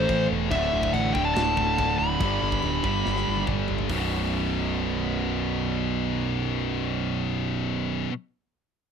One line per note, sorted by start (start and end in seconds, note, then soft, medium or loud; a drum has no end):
0.00 0.50 A2 medium
0.00 0.51 A2 medium
0.00 0.51 E3 medium
0.00 0.50 A3 medium
0.00 0.52 A3 medium
0.00 0.25 C5 medium
0.09 0.27 A1 medium
0.09 kick medium
0.09 china medium
0.31 0.48 E1 medium
0.51 0.69 D1 medium
0.51 1.14 D2 medium
0.51 1.15 A2 medium
0.51 0.95 E5 medium
0.51 kick loud
0.51 china medium
0.55 1.14 D3 medium
0.74 0.91 D1 medium
0.83 kick medium
0.93 1.12 A1 medium
0.93 1.14 F#5 medium
0.93 china medium
1.14 1.33 D1 medium
1.14 2.21 A2 medium
1.14 2.20 D3 medium
1.14 1.25 G5 loud
1.14 kick medium
1.19 2.20 D2 medium
1.25 1.33 A5 loud
1.35 1.54 D1 medium
1.35 1.95 A5 loud
1.35 snare loud
1.35 china medium
1.57 1.75 D1 medium
1.57 kick medium
1.78 1.96 D1 medium
1.78 kick medium
1.78 china medium
1.99 2.18 D1 medium
1.99 3.44 B5 medium
2.20 2.38 G1 loud
2.20 2.83 G2 medium
2.20 2.84 D3 medium
2.20 kick loud
2.20 china medium
2.24 2.83 G3 medium
2.42 2.60 G1 medium
2.52 kick medium
2.62 2.81 D1 medium
2.62 china soft
2.84 3.02 G1 medium
2.84 3.90 D3 medium
2.84 3.89 G3 medium
2.84 kick medium
2.88 3.88 G2 medium
3.06 3.24 G1 medium
3.06 snare medium
3.16 snare soft
3.28 3.45 G1 medium
3.37 high tom medium
3.47 3.65 G1 medium
3.47 kick medium
3.47 mid tom medium
3.68 3.87 G1 medium
3.68 floor tom medium
3.79 floor tom medium
3.89 8.05 B0 loud
3.89 8.08 B1 medium
3.89 8.11 F#2 medium
3.89 8.12 B2 medium
3.89 kick loud
3.89 open hi-hat medium